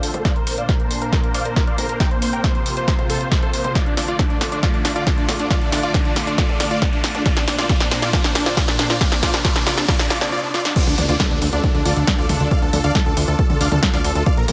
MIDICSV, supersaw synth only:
0, 0, Header, 1, 2, 480
1, 0, Start_track
1, 0, Key_signature, -1, "minor"
1, 0, Tempo, 437956
1, 274, Time_signature, 4, 2, 24, 8
1, 15916, End_track
2, 0, Start_track
2, 0, Title_t, "Supersaw synth"
2, 0, Program_c, 0, 81
2, 34, Note_on_c, 0, 69, 65
2, 116, Note_off_c, 0, 69, 0
2, 154, Note_on_c, 0, 69, 65
2, 236, Note_off_c, 0, 69, 0
2, 274, Note_on_c, 0, 74, 76
2, 274, Note_on_c, 0, 77, 99
2, 356, Note_off_c, 0, 74, 0
2, 356, Note_off_c, 0, 77, 0
2, 395, Note_on_c, 0, 70, 65
2, 477, Note_off_c, 0, 70, 0
2, 516, Note_on_c, 0, 70, 67
2, 597, Note_off_c, 0, 70, 0
2, 634, Note_on_c, 0, 74, 81
2, 634, Note_on_c, 0, 77, 94
2, 716, Note_off_c, 0, 74, 0
2, 716, Note_off_c, 0, 77, 0
2, 755, Note_on_c, 0, 70, 66
2, 837, Note_off_c, 0, 70, 0
2, 875, Note_on_c, 0, 70, 62
2, 957, Note_off_c, 0, 70, 0
2, 1114, Note_on_c, 0, 70, 66
2, 1196, Note_off_c, 0, 70, 0
2, 1235, Note_on_c, 0, 70, 63
2, 1317, Note_off_c, 0, 70, 0
2, 1355, Note_on_c, 0, 70, 62
2, 1437, Note_off_c, 0, 70, 0
2, 1474, Note_on_c, 0, 77, 94
2, 1475, Note_on_c, 0, 74, 77
2, 1557, Note_off_c, 0, 74, 0
2, 1557, Note_off_c, 0, 77, 0
2, 1594, Note_on_c, 0, 70, 62
2, 1676, Note_off_c, 0, 70, 0
2, 1715, Note_on_c, 0, 70, 63
2, 1797, Note_off_c, 0, 70, 0
2, 1834, Note_on_c, 0, 77, 98
2, 1835, Note_on_c, 0, 74, 80
2, 1916, Note_off_c, 0, 77, 0
2, 1917, Note_off_c, 0, 74, 0
2, 1955, Note_on_c, 0, 70, 64
2, 2037, Note_off_c, 0, 70, 0
2, 2075, Note_on_c, 0, 70, 62
2, 2157, Note_off_c, 0, 70, 0
2, 2194, Note_on_c, 0, 70, 75
2, 2194, Note_on_c, 0, 79, 98
2, 2276, Note_off_c, 0, 70, 0
2, 2276, Note_off_c, 0, 79, 0
2, 2314, Note_on_c, 0, 72, 67
2, 2396, Note_off_c, 0, 72, 0
2, 2434, Note_on_c, 0, 72, 67
2, 2516, Note_off_c, 0, 72, 0
2, 2554, Note_on_c, 0, 70, 78
2, 2554, Note_on_c, 0, 79, 93
2, 2636, Note_off_c, 0, 70, 0
2, 2636, Note_off_c, 0, 79, 0
2, 2675, Note_on_c, 0, 72, 67
2, 2757, Note_off_c, 0, 72, 0
2, 2794, Note_on_c, 0, 72, 65
2, 2877, Note_off_c, 0, 72, 0
2, 3034, Note_on_c, 0, 72, 64
2, 3116, Note_off_c, 0, 72, 0
2, 3153, Note_on_c, 0, 72, 63
2, 3236, Note_off_c, 0, 72, 0
2, 3274, Note_on_c, 0, 72, 62
2, 3356, Note_off_c, 0, 72, 0
2, 3395, Note_on_c, 0, 69, 76
2, 3395, Note_on_c, 0, 72, 94
2, 3477, Note_off_c, 0, 69, 0
2, 3477, Note_off_c, 0, 72, 0
2, 3515, Note_on_c, 0, 72, 63
2, 3597, Note_off_c, 0, 72, 0
2, 3635, Note_on_c, 0, 72, 62
2, 3717, Note_off_c, 0, 72, 0
2, 3755, Note_on_c, 0, 69, 77
2, 3755, Note_on_c, 0, 72, 100
2, 3837, Note_off_c, 0, 69, 0
2, 3837, Note_off_c, 0, 72, 0
2, 3874, Note_on_c, 0, 72, 62
2, 3956, Note_off_c, 0, 72, 0
2, 3995, Note_on_c, 0, 72, 65
2, 4077, Note_off_c, 0, 72, 0
2, 4115, Note_on_c, 0, 65, 68
2, 4115, Note_on_c, 0, 74, 89
2, 4197, Note_off_c, 0, 65, 0
2, 4197, Note_off_c, 0, 74, 0
2, 4236, Note_on_c, 0, 62, 60
2, 4317, Note_off_c, 0, 62, 0
2, 4355, Note_on_c, 0, 62, 63
2, 4437, Note_off_c, 0, 62, 0
2, 4474, Note_on_c, 0, 65, 74
2, 4474, Note_on_c, 0, 74, 89
2, 4556, Note_off_c, 0, 65, 0
2, 4556, Note_off_c, 0, 74, 0
2, 4595, Note_on_c, 0, 62, 62
2, 4677, Note_off_c, 0, 62, 0
2, 4714, Note_on_c, 0, 62, 58
2, 4796, Note_off_c, 0, 62, 0
2, 4955, Note_on_c, 0, 62, 61
2, 5037, Note_off_c, 0, 62, 0
2, 5073, Note_on_c, 0, 74, 95
2, 5074, Note_on_c, 0, 65, 73
2, 5156, Note_off_c, 0, 65, 0
2, 5156, Note_off_c, 0, 74, 0
2, 5194, Note_on_c, 0, 62, 57
2, 5276, Note_off_c, 0, 62, 0
2, 5314, Note_on_c, 0, 62, 58
2, 5396, Note_off_c, 0, 62, 0
2, 5433, Note_on_c, 0, 65, 74
2, 5433, Note_on_c, 0, 74, 88
2, 5516, Note_off_c, 0, 65, 0
2, 5516, Note_off_c, 0, 74, 0
2, 5553, Note_on_c, 0, 62, 60
2, 5636, Note_off_c, 0, 62, 0
2, 5674, Note_on_c, 0, 62, 63
2, 5756, Note_off_c, 0, 62, 0
2, 5914, Note_on_c, 0, 62, 60
2, 5996, Note_off_c, 0, 62, 0
2, 6034, Note_on_c, 0, 65, 74
2, 6034, Note_on_c, 0, 74, 92
2, 6116, Note_off_c, 0, 65, 0
2, 6116, Note_off_c, 0, 74, 0
2, 6153, Note_on_c, 0, 62, 64
2, 6236, Note_off_c, 0, 62, 0
2, 6273, Note_on_c, 0, 62, 62
2, 6356, Note_off_c, 0, 62, 0
2, 6392, Note_on_c, 0, 74, 93
2, 6393, Note_on_c, 0, 65, 78
2, 6475, Note_off_c, 0, 74, 0
2, 6476, Note_off_c, 0, 65, 0
2, 6513, Note_on_c, 0, 62, 62
2, 6596, Note_off_c, 0, 62, 0
2, 6632, Note_on_c, 0, 62, 64
2, 6715, Note_off_c, 0, 62, 0
2, 6872, Note_on_c, 0, 62, 62
2, 6955, Note_off_c, 0, 62, 0
2, 6991, Note_on_c, 0, 74, 95
2, 6992, Note_on_c, 0, 65, 77
2, 7075, Note_off_c, 0, 65, 0
2, 7075, Note_off_c, 0, 74, 0
2, 7112, Note_on_c, 0, 62, 58
2, 7195, Note_off_c, 0, 62, 0
2, 7232, Note_on_c, 0, 62, 63
2, 7315, Note_off_c, 0, 62, 0
2, 7352, Note_on_c, 0, 65, 73
2, 7352, Note_on_c, 0, 74, 89
2, 7435, Note_off_c, 0, 65, 0
2, 7435, Note_off_c, 0, 74, 0
2, 7473, Note_on_c, 0, 62, 61
2, 7556, Note_off_c, 0, 62, 0
2, 7592, Note_on_c, 0, 62, 64
2, 7675, Note_off_c, 0, 62, 0
2, 7832, Note_on_c, 0, 62, 63
2, 7915, Note_off_c, 0, 62, 0
2, 7952, Note_on_c, 0, 65, 75
2, 7952, Note_on_c, 0, 74, 100
2, 8035, Note_off_c, 0, 65, 0
2, 8035, Note_off_c, 0, 74, 0
2, 8072, Note_on_c, 0, 62, 64
2, 8155, Note_off_c, 0, 62, 0
2, 8192, Note_on_c, 0, 62, 63
2, 8276, Note_off_c, 0, 62, 0
2, 8312, Note_on_c, 0, 65, 78
2, 8312, Note_on_c, 0, 74, 95
2, 8395, Note_off_c, 0, 65, 0
2, 8395, Note_off_c, 0, 74, 0
2, 8432, Note_on_c, 0, 65, 78
2, 8432, Note_on_c, 0, 74, 104
2, 8515, Note_off_c, 0, 65, 0
2, 8515, Note_off_c, 0, 74, 0
2, 8552, Note_on_c, 0, 62, 66
2, 8635, Note_off_c, 0, 62, 0
2, 8673, Note_on_c, 0, 62, 64
2, 8756, Note_off_c, 0, 62, 0
2, 8792, Note_on_c, 0, 74, 95
2, 8793, Note_on_c, 0, 65, 75
2, 8876, Note_off_c, 0, 65, 0
2, 8876, Note_off_c, 0, 74, 0
2, 8912, Note_on_c, 0, 65, 79
2, 8912, Note_on_c, 0, 74, 99
2, 8995, Note_off_c, 0, 65, 0
2, 8995, Note_off_c, 0, 74, 0
2, 9033, Note_on_c, 0, 62, 62
2, 9116, Note_off_c, 0, 62, 0
2, 9152, Note_on_c, 0, 62, 64
2, 9235, Note_off_c, 0, 62, 0
2, 9272, Note_on_c, 0, 74, 96
2, 9273, Note_on_c, 0, 65, 77
2, 9356, Note_off_c, 0, 65, 0
2, 9356, Note_off_c, 0, 74, 0
2, 9393, Note_on_c, 0, 65, 76
2, 9393, Note_on_c, 0, 74, 101
2, 9476, Note_off_c, 0, 65, 0
2, 9476, Note_off_c, 0, 74, 0
2, 9513, Note_on_c, 0, 62, 67
2, 9596, Note_off_c, 0, 62, 0
2, 9632, Note_on_c, 0, 62, 65
2, 9715, Note_off_c, 0, 62, 0
2, 9753, Note_on_c, 0, 65, 76
2, 9753, Note_on_c, 0, 74, 93
2, 9836, Note_off_c, 0, 65, 0
2, 9836, Note_off_c, 0, 74, 0
2, 9873, Note_on_c, 0, 65, 77
2, 9873, Note_on_c, 0, 74, 102
2, 9956, Note_off_c, 0, 65, 0
2, 9956, Note_off_c, 0, 74, 0
2, 9993, Note_on_c, 0, 62, 66
2, 10076, Note_off_c, 0, 62, 0
2, 10113, Note_on_c, 0, 65, 83
2, 10113, Note_on_c, 0, 74, 103
2, 10196, Note_off_c, 0, 65, 0
2, 10196, Note_off_c, 0, 74, 0
2, 10233, Note_on_c, 0, 62, 68
2, 10316, Note_off_c, 0, 62, 0
2, 10352, Note_on_c, 0, 65, 84
2, 10353, Note_on_c, 0, 74, 102
2, 10435, Note_off_c, 0, 65, 0
2, 10436, Note_off_c, 0, 74, 0
2, 10473, Note_on_c, 0, 62, 65
2, 10556, Note_off_c, 0, 62, 0
2, 10593, Note_on_c, 0, 65, 82
2, 10593, Note_on_c, 0, 74, 106
2, 10676, Note_off_c, 0, 65, 0
2, 10676, Note_off_c, 0, 74, 0
2, 10713, Note_on_c, 0, 62, 68
2, 10796, Note_off_c, 0, 62, 0
2, 10832, Note_on_c, 0, 65, 81
2, 10832, Note_on_c, 0, 74, 108
2, 10915, Note_off_c, 0, 65, 0
2, 10915, Note_off_c, 0, 74, 0
2, 10953, Note_on_c, 0, 62, 67
2, 11036, Note_off_c, 0, 62, 0
2, 11072, Note_on_c, 0, 65, 84
2, 11072, Note_on_c, 0, 74, 105
2, 11155, Note_off_c, 0, 65, 0
2, 11155, Note_off_c, 0, 74, 0
2, 11193, Note_on_c, 0, 62, 66
2, 11276, Note_off_c, 0, 62, 0
2, 11313, Note_on_c, 0, 65, 80
2, 11313, Note_on_c, 0, 74, 106
2, 11396, Note_off_c, 0, 65, 0
2, 11396, Note_off_c, 0, 74, 0
2, 11433, Note_on_c, 0, 62, 69
2, 11516, Note_off_c, 0, 62, 0
2, 11553, Note_on_c, 0, 65, 83
2, 11553, Note_on_c, 0, 74, 102
2, 11636, Note_off_c, 0, 65, 0
2, 11636, Note_off_c, 0, 74, 0
2, 11673, Note_on_c, 0, 62, 68
2, 11756, Note_off_c, 0, 62, 0
2, 11792, Note_on_c, 0, 74, 100
2, 11793, Note_on_c, 0, 65, 77
2, 11875, Note_off_c, 0, 74, 0
2, 11876, Note_off_c, 0, 65, 0
2, 11913, Note_on_c, 0, 62, 66
2, 11996, Note_off_c, 0, 62, 0
2, 12033, Note_on_c, 0, 62, 66
2, 12116, Note_off_c, 0, 62, 0
2, 12153, Note_on_c, 0, 65, 81
2, 12153, Note_on_c, 0, 74, 94
2, 12236, Note_off_c, 0, 65, 0
2, 12236, Note_off_c, 0, 74, 0
2, 12273, Note_on_c, 0, 62, 66
2, 12356, Note_off_c, 0, 62, 0
2, 12393, Note_on_c, 0, 62, 65
2, 12476, Note_off_c, 0, 62, 0
2, 12633, Note_on_c, 0, 62, 67
2, 12716, Note_off_c, 0, 62, 0
2, 12753, Note_on_c, 0, 62, 65
2, 12836, Note_off_c, 0, 62, 0
2, 12872, Note_on_c, 0, 62, 63
2, 12955, Note_off_c, 0, 62, 0
2, 12992, Note_on_c, 0, 65, 80
2, 12992, Note_on_c, 0, 74, 97
2, 13075, Note_off_c, 0, 65, 0
2, 13075, Note_off_c, 0, 74, 0
2, 13112, Note_on_c, 0, 62, 65
2, 13195, Note_off_c, 0, 62, 0
2, 13232, Note_on_c, 0, 62, 67
2, 13315, Note_off_c, 0, 62, 0
2, 13352, Note_on_c, 0, 65, 79
2, 13353, Note_on_c, 0, 74, 97
2, 13435, Note_off_c, 0, 65, 0
2, 13436, Note_off_c, 0, 74, 0
2, 13472, Note_on_c, 0, 62, 66
2, 13555, Note_off_c, 0, 62, 0
2, 13593, Note_on_c, 0, 62, 62
2, 13676, Note_off_c, 0, 62, 0
2, 13713, Note_on_c, 0, 74, 76
2, 13713, Note_on_c, 0, 77, 99
2, 13796, Note_off_c, 0, 74, 0
2, 13796, Note_off_c, 0, 77, 0
2, 13834, Note_on_c, 0, 69, 64
2, 13916, Note_off_c, 0, 69, 0
2, 13954, Note_on_c, 0, 69, 66
2, 14036, Note_off_c, 0, 69, 0
2, 14074, Note_on_c, 0, 74, 82
2, 14074, Note_on_c, 0, 77, 98
2, 14156, Note_off_c, 0, 74, 0
2, 14156, Note_off_c, 0, 77, 0
2, 14194, Note_on_c, 0, 69, 68
2, 14276, Note_off_c, 0, 69, 0
2, 14313, Note_on_c, 0, 69, 68
2, 14396, Note_off_c, 0, 69, 0
2, 14554, Note_on_c, 0, 69, 66
2, 14636, Note_off_c, 0, 69, 0
2, 14674, Note_on_c, 0, 69, 68
2, 14756, Note_off_c, 0, 69, 0
2, 14794, Note_on_c, 0, 69, 62
2, 14876, Note_off_c, 0, 69, 0
2, 14913, Note_on_c, 0, 77, 93
2, 14914, Note_on_c, 0, 74, 79
2, 14996, Note_off_c, 0, 74, 0
2, 14996, Note_off_c, 0, 77, 0
2, 15034, Note_on_c, 0, 69, 64
2, 15116, Note_off_c, 0, 69, 0
2, 15153, Note_on_c, 0, 69, 63
2, 15236, Note_off_c, 0, 69, 0
2, 15273, Note_on_c, 0, 74, 77
2, 15273, Note_on_c, 0, 77, 98
2, 15356, Note_off_c, 0, 74, 0
2, 15356, Note_off_c, 0, 77, 0
2, 15393, Note_on_c, 0, 69, 67
2, 15476, Note_off_c, 0, 69, 0
2, 15512, Note_on_c, 0, 69, 65
2, 15595, Note_off_c, 0, 69, 0
2, 15631, Note_on_c, 0, 74, 79
2, 15631, Note_on_c, 0, 77, 100
2, 15715, Note_off_c, 0, 74, 0
2, 15715, Note_off_c, 0, 77, 0
2, 15752, Note_on_c, 0, 70, 64
2, 15835, Note_off_c, 0, 70, 0
2, 15872, Note_on_c, 0, 70, 67
2, 15916, Note_off_c, 0, 70, 0
2, 15916, End_track
0, 0, End_of_file